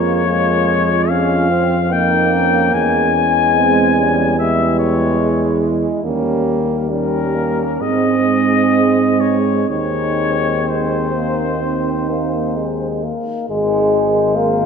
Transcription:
Already playing: tuba F2, euphonium G#3, trombone A#3, french horn section F4, flugelhorn C#5
0.26 trombone G#3, euphonium A#3, french horn section F4
1.09 euphonium G#3, trombone C#4, flugelhorn F5
1.51 euphonium C4, trombone C4
1.91 trombone A#3, euphonium A#3, french horn section D#4, flugelhorn G5
2.34 french horn section C#4
2.74 tuba E2, euphonium G#3, french horn section C#4, flugelhorn G#5
3.16 euphonium G#3
3.55 trombone G#3, french horn section C4
3.97 trombone G3, french horn section C#4
4.38 euphonium G3, trombone G#3, french horn section E4, flugelhorn E5
4.79 flugelhorn C#5
5.19 euphonium G#3, french horn section E4
6.04 tuba D#2, euphonium G3, trombone A#3, french horn section C#4
6.90 trombone G3, euphonium G3, french horn section C#4, flugelhorn A#4
7.35 trombone A#3
7.81 tuba G#2, trombone G#3, euphonium G#3, french horn section C4, flugelhorn D#5
9.21 flugelhorn C#5
9.69 tuba D#2, euphonium G#3, trombone C4, french horn section D#4, flugelhorn C#5
10.67 euphonium G#3, french horn section D#4, flugelhorn C5
11.15 euphonium A#3
11.62 euphonium C4, french horn section D#4
12.10 euphonium A#3
12.57 euphonium G#3
13.04 euphonium A#3
13.49 tuba G#1, trombone D#3, euphonium G#3, french horn section G#4, flugelhorn C5
14.36 euphonium A#3

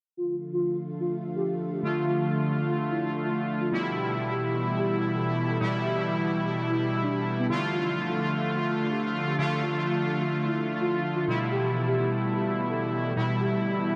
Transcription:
0.17 synth drone D3 A3, analog synth pad D3 F3 A3 F4, analog synth lead F4
0.53 analog synth lead F4
1.00 analog synth lead F4
1.35 analog synth lead G4
1.71 analog synth lead G4
1.83 analog polysynth D3 A3 F4
2.06 analog synth lead F4
2.65 analog synth lead F4
2.89 analog synth lead E4
3.24 analog synth lead F4
3.60 analog synth lead F4
3.72 analog polysynth B2 G3 E4
3.95 analog synth pad B2 E3 G3 E4, analog synth lead G4
4.31 analog synth lead G4
4.78 analog synth lead G4
5.13 analog synth lead A4
5.49 analog synth lead A4
5.61 analog polysynth B2 G3 E4
5.84 analog synth lead G4
6.43 analog synth lead G4
6.67 analog synth lead E4
7.02 analog synth lead D4
7.38 analog synth lead B3
7.50 analog polysynth D3 A3 F4
7.73 analog synth pad D3 F3 A3 F4, analog synth lead F4
8.09 analog synth lead F4
8.56 analog synth lead F4
8.91 analog synth lead G4
9.27 analog synth lead G4
9.39 analog polysynth D3 A3 F4
9.62 analog synth lead F4
10.21 analog synth lead F4
10.45 analog synth lead E4
10.80 analog synth lead F4
11.16 analog synth lead F4
11.27 analog polysynth B2 G3 E4
11.51 analog synth pad B2 E3 G3 E4, analog synth lead G4
11.87 analog synth lead G4
12.34 analog synth lead G4
12.69 analog synth lead A4
13.05 analog synth lead A4
13.17 analog polysynth B2 G3 E4
13.40 analog synth lead G4

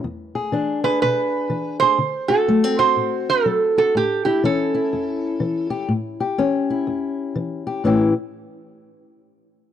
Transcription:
0.04 steel-string acoustic guitar E2
0.35 steel-string acoustic guitar G#4
0.52 steel-string acoustic guitar E3 D4
0.84 steel-string acoustic guitar G#4, resonator guitar played with a steel bar B4
1.02 steel-string acoustic guitar B2, resonator guitar played with a steel bar B4
1.50 steel-string acoustic guitar E3
1.80 steel-string acoustic guitar G#4, resonator guitar played with a steel bar C5
1.98 steel-string acoustic guitar D3
2.28 steel-string acoustic guitar F#4, resonator guitar played with a steel bar A4
2.48 steel-string acoustic guitar F#3 A3
2.64 steel-string acoustic guitar C4
2.79 steel-string acoustic guitar F#4, resonator guitar played with a steel bar C5
2.96 steel-string acoustic guitar A2
3.30 resonator guitar played with a steel bar A4
3.46 steel-string acoustic guitar F#3
3.78 steel-string acoustic guitar F#4, resonator guitar played with a steel bar A4
3.95 steel-string acoustic guitar A2, resonator guitar played with a steel bar G4
4.25 steel-string acoustic guitar E4, resonator guitar played with a steel bar G4
4.44 steel-string acoustic guitar E3 C#4, resonator guitar played with a steel bar A4
4.75 steel-string acoustic guitar E4
4.93 steel-string acoustic guitar E2
5.40 steel-string acoustic guitar E3
5.70 steel-string acoustic guitar G4
5.89 steel-string acoustic guitar A2
6.20 steel-string acoustic guitar G4
6.38 steel-string acoustic guitar E3 C#4
6.70 steel-string acoustic guitar E4
6.87 steel-string acoustic guitar E2
7.35 steel-string acoustic guitar E3
7.67 steel-string acoustic guitar G4
7.84 steel-string acoustic guitar A2 E3 C#4 E4 G4

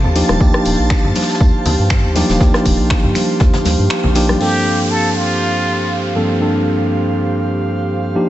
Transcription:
Already playing: tine electric piano F3 A#3 C4 D4 A4, analog synth pad G4 C5 F5, string machine A5
0.04 analog synth bass D#2, low conga
0.15 tine electric piano F3 A#3 D4 D#4 G4, open hi-hat, tambourine
0.29 analog synth bass D#1, cross-stick, high conga
0.39 analog synth bass D#2, tine electric piano F3 A#3 D4 D#4 G4, kick, tambourine
0.54 cross-stick
0.65 analog synth bass D#1, open hi-hat, tambourine
0.79 analog synth bass A#1
0.90 finger snap, kick, snare, tambourine
1.04 analog synth bass G2, low conga
1.15 snare, open hi-hat, tambourine, high conga
1.22 snare, tambourine
1.29 snare, tambourine
1.35 snare, tambourine
1.41 analog synth bass D#2, kick, tambourine
1.66 analog synth bass D#2, open hi-hat, tambourine, low conga
1.79 analog synth bass G2
1.90 finger snap, kick, snare, tambourine
2.04 analog synth bass D#2
2.15 tine electric piano F3 A#3 D4 D#4 G4, snare, open hi-hat, tambourine, high conga
2.29 analog synth bass D#1, snare, tambourine
2.39 analog synth bass D#2, tine electric piano F3 A#3 D4 D#4 G4, kick, snare, tambourine
2.54 cross-stick, snare
2.65 analog synth bass D#1, kick, open hi-hat, tambourine
2.79 analog synth bass A#1
2.90 finger snap, kick, snare, tambourine
3.04 analog synth bass G2, low conga
3.15 finger snap, snare, open hi-hat, tambourine, high conga
3.40 analog synth bass D#2, kick, snare, tambourine
3.53 snare, tambourine, low conga
3.65 analog synth bass D#2, snare, open hi-hat, tambourine, high conga
3.79 analog synth bass G2
3.90 finger snap, snare, tambourine
4.04 analog synth bass A#1, low conga
4.15 tine electric piano F3 A#3 D4 D#4 G4, snare, open hi-hat, tambourine
4.29 cross-stick, high conga
4.39 tine electric piano G2 F3 A#3 C4 D4 A4, muted trumpet G4, crash, downlifter
4.91 muted trumpet A4
5.16 muted trumpet F4
6.15 tine electric piano G2 F3 A#3 C4 D4 A4
6.39 tine electric piano G2 F3 A#3 C4 D4 A4
8.15 analog synth pad D#3, tine electric piano F3 A#3 D4 D#4 G4

